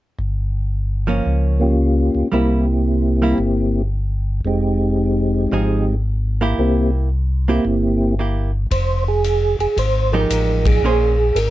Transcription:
0.19 1.21 G1 medium
1.07 1.75 F3 medium
1.07 1.75 A#3 medium
1.07 1.76 C#4 medium
1.26 2.10 C#2 medium
1.60 2.28 A#3 soft
1.60 2.28 C#4 soft
1.60 2.29 F4 soft
1.60 2.29 G4 medium
2.15 2.23 C#2 soft
2.32 3.35 C2 medium
2.32 2.64 G3 soft
2.32 2.64 A#3 soft
2.32 3.82 A#3 soft
2.32 3.82 C4 soft
2.32 2.65 E4 soft
2.32 3.82 E4 soft
2.32 3.83 G4 soft
3.22 3.37 G3 soft
3.22 3.38 A#3 medium
3.22 3.38 E4 medium
3.38 4.41 G1 medium
4.45 5.47 F1 medium
4.45 5.94 G#3 medium
4.45 5.95 C4 medium
4.45 5.95 D#4 medium
4.45 5.95 G4 medium
5.52 6.54 G#1 medium
5.52 5.84 F3 soft
5.52 5.84 C4 soft
5.52 5.84 D#4 medium
5.52 5.84 G#4 soft
6.41 7.08 A#3 medium
6.41 7.08 E4 medium
6.41 7.09 G4 medium
6.58 7.60 C2 medium
6.58 6.90 A#3 medium
6.58 6.90 C4 medium
6.58 6.91 E4 medium
6.58 6.91 G4 medium
7.48 8.15 A#3 medium
7.48 7.63 A#3 soft
7.48 8.15 C4 medium
7.48 8.15 E4 medium
7.48 7.64 E4 medium
7.48 8.15 G4 medium
7.48 7.64 G4 medium
7.65 8.67 G1 medium
8.19 8.50 A#3 soft
8.19 8.50 E4 soft
8.19 8.51 G4 soft
8.71 9.55 F1 medium
8.71 9.04 C5 medium
8.71 kick soft
8.71 ride medium
9.08 9.56 G#4 loud
9.24 hi-hat pedal soft
9.24 ride soft
9.59 9.68 F1 soft
9.59 9.78 G#4 medium
9.59 ride soft
9.77 10.26 G#1 medium
9.77 10.14 C5 medium
9.77 kick soft
9.77 ride medium
10.12 10.80 F3 medium
10.12 10.80 G#3 medium
10.12 10.80 D#4 medium
10.12 10.81 G4 medium
10.12 10.67 A#4 medium
10.30 10.79 A1 medium
10.30 hi-hat pedal medium
10.30 ride medium
10.66 11.39 G#4 loud
10.66 kick medium
10.66 ride medium
10.82 11.32 A#1 medium
10.82 11.15 A#3 medium
10.82 11.16 C#4 medium
10.82 11.16 G#4 medium
10.82 11.16 C5 medium
11.35 11.50 G#1 medium
11.35 11.50 A#4 medium
11.35 hi-hat pedal soft
11.35 ride medium

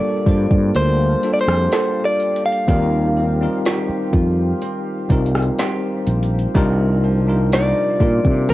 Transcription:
0.00 0.26 G3 loud
0.00 2.68 G3 medium
0.00 0.26 A#3 loud
0.00 0.74 A#3 medium
0.00 2.65 A#3 medium
0.00 0.27 D4 loud
0.00 0.26 F4 medium
0.00 0.28 F4 loud
0.00 2.69 G4 medium
0.00 6.52 G4 medium
0.00 1.25 A4 loud
0.00 1.71 A4 medium
0.00 2.70 A#4 medium
0.00 0.76 D5 medium
0.00 6.52 F5 medium
0.00 2.64 A5 medium
0.26 0.46 G2 medium
0.26 0.93 G3 medium
0.26 0.93 A#3 medium
0.26 0.93 D4 medium
0.26 1.72 F4 medium
0.26 0.94 F4 medium
0.26 0.94 C5 medium
0.26 kick loud
0.51 0.70 G2 loud
0.51 kick loud
0.75 1.14 D2 medium
0.75 1.71 A#3 medium
0.75 1.33 C5 medium
0.75 closed hi-hat medium
1.22 2.23 G3 medium
1.22 2.23 A#3 medium
1.22 2.24 D4 medium
1.22 2.24 F4 medium
1.22 2.24 A4 medium
1.22 closed hi-hat medium
1.33 1.40 D5 medium
1.39 2.05 C5 medium
1.39 closed hi-hat medium
1.48 1.67 F2 medium
1.48 cross-stick loud
1.55 closed hi-hat soft
1.72 3.16 A#3 medium
1.72 3.65 F4 medium
1.72 2.78 A4 medium
1.72 snare loud
1.72 closed hi-hat medium
2.05 2.45 D5 medium
2.20 closed hi-hat medium
2.36 closed hi-hat soft
2.46 5.31 F5 medium
2.52 closed hi-hat soft
2.68 3.46 D#2 loud
2.68 6.55 D#3 medium
2.68 3.18 G3 loud
2.68 3.18 C4 medium
2.68 3.19 D#4 medium
2.68 3.19 F4 medium
2.68 3.19 A#4 loud
2.68 8.54 C5 medium
2.68 4.60 C6 loud
2.68 kick loud
2.68 closed hi-hat medium
3.17 3.65 C4 medium
3.40 4.57 G3 medium
3.40 4.58 C4 medium
3.40 4.58 D#4 medium
3.40 4.58 F4 medium
3.40 4.59 A#4 medium
3.65 4.61 C4 medium
3.65 4.13 F4 medium
3.65 5.59 G4 medium
3.65 snare loud
3.65 closed hi-hat medium
3.89 muted fretless electric bass stroke soft
4.13 4.52 F2 loud
4.13 5.59 F4 medium
4.13 kick loud
4.61 5.58 C4 medium
4.61 6.53 A#5 medium
4.61 closed hi-hat medium
5.10 5.49 C2 loud
5.10 6.10 G3 medium
5.10 6.10 C4 medium
5.10 6.11 D#4 medium
5.10 6.11 F4 medium
5.10 6.11 A#4 loud
5.10 kick medium
5.10 closed hi-hat medium
5.26 closed hi-hat soft
5.35 cross-stick medium
5.42 closed hi-hat soft
5.58 7.53 C4 medium
5.58 7.53 F4 medium
5.58 7.07 G4 medium
5.58 snare loud
5.58 closed hi-hat medium
6.07 6.46 A#1 medium
6.07 closed hi-hat medium
6.23 closed hi-hat soft
6.39 closed hi-hat soft
6.54 7.72 C2 loud
6.54 8.54 C3 medium
6.54 7.05 G3 loud
6.54 8.54 A#3 medium
6.54 7.05 D4 loud
6.54 7.06 D#4 loud
6.54 7.06 F4 loud
6.54 7.06 A#4 loud
6.54 8.54 F5 medium
6.54 8.54 D6 medium
6.54 kick loud
6.54 closed hi-hat medium
7.04 7.52 F3 medium
7.27 7.78 G3 medium
7.27 7.78 D4 medium
7.27 7.78 D#4 medium
7.27 7.79 F4 medium
7.27 7.79 A#4 medium
7.52 8.49 F3 medium
7.52 8.00 A#3 medium
7.52 8.54 D#4 medium
7.52 8.50 D5 loud
7.52 snare loud
7.52 closed hi-hat medium
8.00 8.20 A#2 medium
8.00 8.54 G3 medium
8.00 8.54 A#3 medium
8.00 8.54 D4 medium
8.00 8.54 D#4 medium
8.00 8.54 F4 medium
8.00 8.54 A#4 medium
8.00 kick loud
8.25 8.51 C3 loud
8.25 kick loud
8.49 8.54 F2 loud
8.49 8.54 F3 medium
8.49 8.54 C5 loud
8.49 closed hi-hat medium

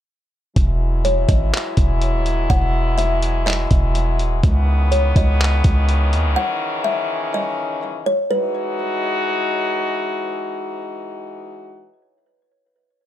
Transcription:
0.56 1.26 E1 loud
0.56 4.40 E3 medium
0.56 4.40 F#3 medium
0.56 4.40 G#3 medium
0.56 4.40 E4 medium
0.56 kick loud
0.56 closed hi-hat medium
1.05 1.28 C#5 medium
1.05 closed hi-hat medium
1.29 1.52 G#1 loud
1.29 1.52 D#5 medium
1.29 kick loud
1.29 closed hi-hat medium
1.54 clap loud
1.77 2.15 E1 loud
1.77 kick loud
1.77 closed hi-hat medium
2.02 closed hi-hat medium
2.14 2.48 D#1 medium
2.26 closed hi-hat medium
2.50 3.67 E1 loud
2.50 2.95 F#5 medium
2.50 kick loud
2.50 closed hi-hat medium
2.98 3.43 E5 medium
2.98 closed hi-hat medium
3.23 closed hi-hat medium
3.46 3.92 D#5 medium
3.46 clap loud
3.71 4.21 E1 loud
3.71 kick loud
3.71 closed hi-hat medium
3.95 closed hi-hat medium
4.19 4.42 D#1 loud
4.19 closed hi-hat medium
4.43 5.13 C#2 loud
4.43 8.14 C#3 medium
4.43 8.14 D#3 medium
4.43 8.14 E3 medium
4.43 6.35 B3 medium
4.43 kick loud
4.43 closed hi-hat medium
4.92 5.15 C#5 medium
4.92 closed hi-hat medium
5.16 5.62 C#2 loud
5.16 5.39 D#5 medium
5.16 kick loud
5.16 closed hi-hat medium
5.41 clap loud
5.64 6.14 C#2 loud
5.64 kick loud
5.64 closed hi-hat medium
5.89 closed hi-hat medium
6.13 6.26 D#2 loud
6.13 closed hi-hat medium
6.25 6.36 C#2 loud
6.36 8.14 C#4 medium
6.36 6.82 F#5 medium
6.84 7.30 E5 medium
7.34 8.03 D#5 medium
8.06 8.29 C#5 medium
8.31 11.89 E3 medium
8.31 11.89 G#3 medium
8.31 11.89 D#4 medium
8.31 11.89 F#4 medium
8.31 9.72 B4 medium

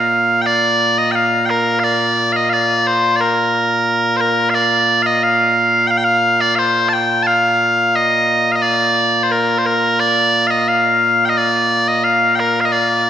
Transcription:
0.00 13.10 A#2 medium
0.00 13.10 A#3 medium
0.00 0.42 F5 medium
0.42 0.46 G5 loud
0.46 0.98 D5 loud
0.98 1.11 D#5 medium
1.11 1.15 G5 medium
1.15 1.46 F5 medium
1.46 1.50 G5 medium
1.50 1.79 A#4 medium
1.79 1.84 F5 medium
1.84 2.32 D5 medium
2.32 2.49 D#5 medium
2.32 2.36 F5 medium
2.49 2.87 D5 medium
2.49 2.53 F5 medium
2.87 3.16 C5 medium
3.16 3.21 D5 medium
3.21 4.16 A#4 medium
4.16 4.20 C5 medium
4.20 4.50 A#4 medium
4.50 4.54 F5 loud
4.54 5.02 D5 loud
5.02 5.23 D#5 loud
5.02 5.06 F5 loud
5.23 5.87 F5 loud
5.87 5.98 F5 loud
5.87 5.91 G5 loud
5.98 6.04 G5 loud
6.04 6.41 F5 loud
6.41 6.55 D5 loud
6.55 6.89 C5 medium
6.55 6.59 F5 medium
6.89 6.93 A5 loud
6.93 7.23 G5 loud
7.23 7.27 A5 loud
7.27 7.96 F5 loud
7.96 8.52 D#5 loud
8.52 8.62 D#5 medium
8.52 8.55 F5 medium
8.62 9.23 D5 loud
9.23 9.31 C5 medium
9.31 9.58 A#4 medium
9.58 9.66 C5 medium
9.66 10.00 A#4 medium
10.00 10.47 D5 loud
10.47 10.68 D#5 medium
10.47 10.50 F5 medium
10.68 11.25 F5 medium
11.25 11.37 D#5 medium
11.25 11.29 G5 medium
11.37 11.88 D5 medium
11.88 12.04 D#5 medium
12.04 12.35 F5 medium
12.35 12.40 G5 medium
12.40 12.61 A#4 medium
12.61 12.65 F5 medium
12.65 12.72 D#5 medium
12.72 13.10 D5 medium

